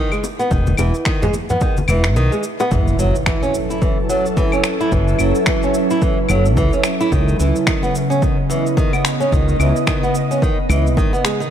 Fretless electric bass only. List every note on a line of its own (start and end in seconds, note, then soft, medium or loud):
0.51 0.72 E1 loud
0.78 0.90 E1 medium
1.88 2.16 E1 loud
2.16 2.28 B1 medium
2.71 2.93 F#1 loud
2.98 3.10 F#1 medium
4.92 5.13 F#1 loud
5.19 5.31 F#1 medium
6.29 6.57 F#1 loud
6.57 6.68 C#2 medium
7.12 7.33 C#2 loud
7.39 7.51 C#2 medium
9.32 9.53 C#2 loud
9.59 9.71 C#2 medium
10.69 10.97 C#2 medium
10.97 11.09 G#1 loud